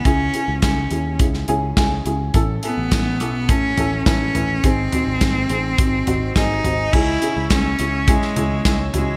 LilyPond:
<<
  \new Staff \with { instrumentName = "Tonewheel organ" } { \time 4/4 \key cis \minor \tempo 4 = 105 r1 | r1 | r1 | <cis'' gis'' e'''>1 | }
  \new Staff \with { instrumentName = "Upright piano" } { \time 4/4 \key cis \minor <cis' e' gis'>8 <cis' e' gis'>8 <cis' e' gis'>8 <cis' e' gis'>8 <cis' e' gis'>8 <cis' e' gis'>8 <cis' e' gis'>8 <cis' e' gis'>8 | <cis' e' a'>8 <cis' e' a'>8 <cis' e' a'>8 <cis' e' a'>8 <cis' e' a'>8 <cis' e' a'>8 <cis' e' b'>8 <cis' e' b'>8 | <bis dis' gis'>8 <bis dis' fis'>8 <bis dis' gis'>8 <bis dis' gis'>8 <bis dis' fis'>8 <bis dis' fis'>8 <bis dis' gis'>8 <bis dis' fis'>8 | <cis' e' gis'>8 <cis' e' gis'>8 <cis' e' gis'>8 <cis' e' gis'>8 <cis' e' gis'>8 <cis' e' gis'>8 <cis' e' gis'>8 <cis' e' fis'>8 | }
  \new Staff \with { instrumentName = "Upright piano" } { \clef bass \time 4/4 \key cis \minor cis4. r2 r8 | a,4. r2 r8 | gis,4. r2 r8 | cis4. r2 r8 | }
  \new Staff \with { instrumentName = "Cello" } { \time 4/4 \key cis \minor cis'4 cis'4 r2 | r8 b4. cis'4 cis'4 | bis2. dis'4 | e'4 cis'4 gis4 gis8 gis8 | }
  \new Staff \with { instrumentName = "Picked electric bass" } { \clef bass \time 4/4 \key cis \minor cis,8 r16 cis,16 cis,8 dis,8 cis,8 cis,8 cis,8 cis,8 | a,,8 r16 a,,16 a,,8 b,,8 a,,8 a,,8 a,,8 a,,8 | gis,,8 r16 gis,,16 gis,,8 a,,8 gis,,8 gis,,8 gis,,8 gis,,8 | cis,8 r16 cis,16 cis,8 cis,8. r16 cis,8 cis,8 cis,8 | }
  \new DrumStaff \with { instrumentName = "Drums" } \drummode { \time 4/4 <hh bd>8 hh8 <hh bd sn>8 hh8 <hh bd>16 sn16 hh8 <hh bd sn>8 hh8 | <hh bd>8 hh8 <hh bd sn>8 hh8 <hh bd>8 <hh tomfh>8 <hh bd sn>8 <hh tomfh>8 | <hh bd>8 <hh tomfh>8 <hh bd sn>8 hh8 <hh bd>8 <hh tomfh>8 <hh bd sn>8 <hh tomfh>8 | <cymc bd>8 hh8 <hh bd sn>8 hh8 <hh bd>16 sn16 <hh tomfh>8 <hh bd sn>8 <hh tomfh>8 | }
>>